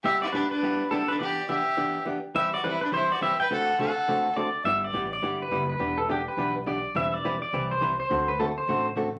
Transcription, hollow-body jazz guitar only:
X:1
M:4/4
L:1/8
Q:"Swing" 1/4=209
K:G
V:1 name="Hollow-body jazz guitar"
[G,B,EG] z [G,B,EG] z [G,B,EG] z [G,B,EG] z | [E,B,DG] z [E,B,DG] z [E,B,DG] z [E,B,DG] z | [E,G,CEB] z [E,G,CEB] z [E,G,CEB] z [E,G,CEB] z | [D,A,CFA] z [D,A,CFA] z [D,A,CFA] z [D,A,CFA] z |
[G,B,EG] z [G,B,EG] z [G,B,EG] z [G,B,EG] z | [E,B,DG] z [E,B,DG] z [E,B,DG] z [E,B,DG] z | [E,G,CEB] z [E,G,CEB] z [E,G,CEB] z [E,G,CEB] z | [D,A,CFA] z [D,A,CFA] z [D,A,CFA] z [D,A,CFA] z |]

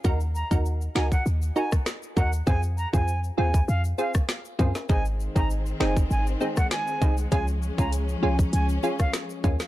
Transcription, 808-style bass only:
X:1
M:4/4
L:1/16
Q:1/4=99
K:Abmix
V:1 name="808-style bass" clef=bass
E,,3 E,,3 D,,2 E,,2 z4 E,,2 | F,,3 F,,3 E,,2 F,,2 z4 G,, z | A,,,3 A,,,3 G,,,2 A,,,2 z4 C,,2 | D,,3 D,,3 C,,2 D,,2 z4 E,, z |]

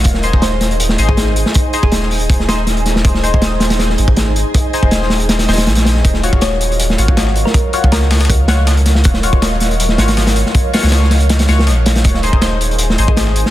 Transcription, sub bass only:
X:1
M:4/4
L:1/16
Q:1/4=160
K:Abmix
V:1 name="Sub bass" clef=bass
E,,,8- E,,,2 A,,,4- A,,, z | z3 E,,,12- E,,, | E,,,8- E,,,2 A,,,4- A,,, z | z3 E,,,6- E,,, E,,,2 B,,,4 |
E,,,8- E,,,2 A,,,4- A,,, z | z3 D,,12- D,, | E,,,8- E,,,2 A,,,4- A,,, z | z3 D,,6- D,, D,,2 B,,,4 |
E,,,8- E,,,2 A,,,4- A,,, z |]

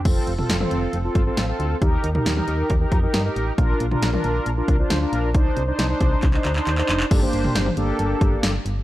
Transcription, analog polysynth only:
X:1
M:4/4
L:1/16
Q:1/4=136
K:Gm
V:1 name="Analog polysynth"
[CFA]3 [CFA]2 [CFA]3 z [CFA]2 [CFA]2 [CFA]3 | [EGB]3 [EGB]2 [EGB]3 z [EGB]2 [EGB]2 [EGB]3 | [DFB]3 [DFB]2 [DFB]3 z [DFB]2 [DFc]2 [DFB]3 | [DEc]3 [DEc]2 [DEc]3 z [DEc]2 [DEc]2 [DEc]3 |
[B,DGA] [B,DGc]4 z [B,DGA]6- [B,DGA] z3 |]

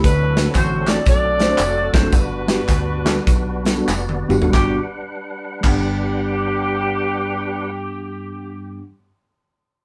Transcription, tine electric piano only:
X:1
M:4/4
L:1/16
Q:"Swing" 1/4=90
K:G
V:1 name="Tine electric piano"
z2 [A,CDFA] z3 [A,CDFA] z3 [A,CDFc] [A,CDFc] z2 [A,CDFA] [A,CDFA] | z2 [G,B,DFG] z3 [G,B,DFA] z3 [G,B,DFA] [G,B,DFA] z2 [G,B,DFG] [G,B,DFA] | [G,B,DF] z4 z [G,B,Df]8- [G,B,Df]2- | [G,B,Df]16 |]
V:2 name="Tine electric piano" clef=bass
D,6 z8 z2 | G,,6 z8 z2 | G,,2 z4 G,,8- G,,2- | G,,16 |]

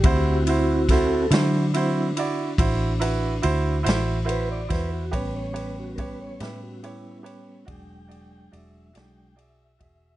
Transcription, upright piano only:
X:1
M:12/8
L:1/8
Q:3/8=47
K:D
V:1 name="Upright piano"
[EF=c] [EFc] [EFc] [EFc] [EFc] [EFd] [EFc] [EFB] [EFc] [EFc] [EFc] [EFc] | [GBc] [GBc] [GBc] [GBe] [GBc] [GBc] [F^Gd] [FGd] [FGd] [FGd] [FGd] [FGe] |]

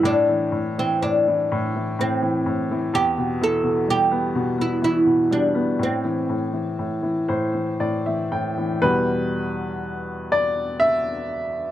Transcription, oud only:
X:1
M:3/4
L:1/16
Q:1/4=61
K:Am
V:1 name="Oud"
D3 C D4 C4 | G2 A2 G3 E E2 D2 | C8- C2 z2 | z12 |]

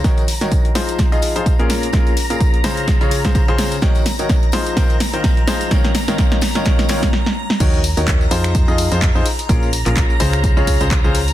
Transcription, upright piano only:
X:1
M:4/4
L:1/16
Q:"Swing 16ths" 1/4=127
K:Ebdor
V:1 name="Upright piano"
[E,EGBd] z2 [E,EGBd]2 z [F,EFAc]3 [F,EFAe]2 [F,EFAc] z [B,,DFAB]2 z | [B,,DFAB] z2 [B,,DFAB]2 z [D,DFAc]3 [D,DFAd]2 [D,DFAc] z [D,DFAc]2 z | [E,EGBd] z2 [E,EGBd]2 z [F,EFAc]2 [E,EFBc] z2 [E,EFBc]2 z [F,EFAc]2 | [E,EFBd] z2 [E,EFBd] [E,EFBd] z2 [E,EFBd] [E,EFBd] z [E,EFBd] z4 z |
[E,EGBd] z2 [E,EGBd]2 z [F,EFAc]3 [F,EFAe]2 [F,EFAc] z [EFAc] z2 | [B,,DFAB] z2 [B,,DFAB]2 z [D,DFAc]3 [D,DFAd]2 [D,DFAc] z [D,DFAc] z2 |]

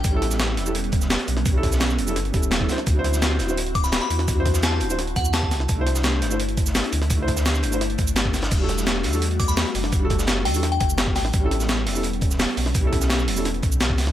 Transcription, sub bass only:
X:1
M:4/4
L:1/16
Q:1/4=170
K:Ador
V:1 name="Sub bass" clef=bass
A,,,6 E,,,6- E,,, z B,,,2- | B,,,6 E,,,2 G,,,2 E,,,4 z2 | D,,6 D,,,6- D,,, z E,,2- | E,,6 D,,,4 E,,4 C,,2 |
C,,6 G,,,6- G,,, z D,,2- | D,,6 G,,,4 A,,, G,,,4- G,,, | E,,,6 E,,6- E,, z F,,,2- | F,,,6 E,,4 F,,,4 A,,,2 |
A,,,6 E,,,6- E,,, z B,,,2- | B,,,6 E,,,4 B,,,4 D,,2 |]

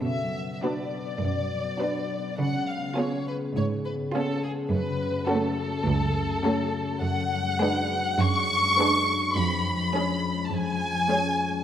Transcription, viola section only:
X:1
M:4/4
L:1/8
Q:1/4=103
K:C#phr
V:1 name="Viola section"
z2 [B,D]2 z2 [B,D]2 | z2 [B,C]2 z2 [B,C]2 | z2 [A,C]2 z2 [A,C]2 | z2 [G,D]2 z2 [G,D]2 |
z2 [G,C]2 z2 [G,C]2 |]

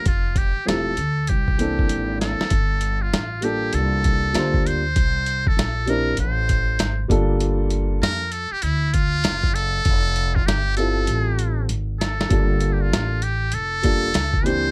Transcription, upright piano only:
X:1
M:4/4
L:1/8
Q:"Swing 16ths" 1/4=98
K:Gdor
V:1 name="Upright piano"
z2 [F,A,CEG] z2 [E,B,CDA]3 | z3 [G,B,DFA]3 [G,B,DFc] z | z3 [G,CDEB] z3 [G,B,DFA]- | [G,B,DFA]2 z6 |
z3 [G,CEFA]3 z2 | [G,B,DFA]3 z2 [G,B,DFA] z [E,B,CDG] |]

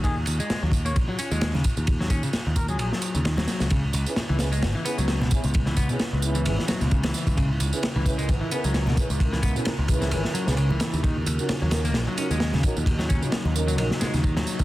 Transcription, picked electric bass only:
X:1
M:4/4
L:1/16
Q:"Swing 16ths" 1/4=131
K:C#dor
V:1 name="Picked electric bass" clef=bass
D,,2 D,, z2 D,,3 A,,, z2 D,,3 z D,,- | D,,2 D,, z2 D,,3 A,,, z2 D,,3 z C,,- | C,,2 C,, z2 C,,3 G,,, z2 C,,3 z C,,- | C,,2 C,, z2 C,,3 G,,, z2 C,,3 z C,,- |
C,,2 C,, z2 C,,3 G,,, z2 C,,3 z C,,- | C,,2 C,, z2 C,,3 G,,, z2 C,,3 z D,,- | D,,2 D,, z2 D,,3 A,,, z2 D,,3 z D,,- | D,,2 D,, z2 D,,3 A,,, z2 D,,3 z D,, |]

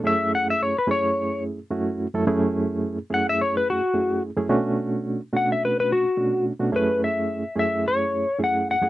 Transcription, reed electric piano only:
X:1
M:4/4
L:1/16
Q:"Swing 16ths" 1/4=108
K:F#m
V:1 name="Reed electric piano"
[F,,A,CEG]4- [F,,A,CEG] z [F,,A,CEG]4- [F,,A,CEG] z [F,,A,CEF]2 z [F,,A,CEA] | [F,,A,CEG]4- [F,,A,CEG] z [F,,A,CEG]4- [F,,A,CEG] z [F,,A,CEG]2 z [F,,A,CEG] | [B,,A,CDF]4- [B,,A,CDF] z [B,,A,CDF]4- [B,,A,CDF] z [B,,A,CDF]2 z [B,,A,CDF] | [F,,A,CEG]4- [F,,A,CEG] z [F,,A,CEG]4- [F,,A,CEG] z [F,,A,CEG]2 z [F,,A,CEG] |]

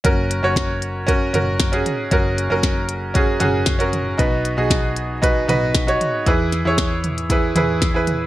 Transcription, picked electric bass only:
X:1
M:4/4
L:1/16
Q:1/4=116
K:F#mix
V:1 name="Picked electric bass" clef=bass
F,,,3 F,,,6- F,,, F,,,4 z2 | F,,,3 F,,,6- F,,, F,,,6 | B,,,3 B,,,6- B,,, B,,,4 z2 | E,,3 E,,6- E,, E,,6 |]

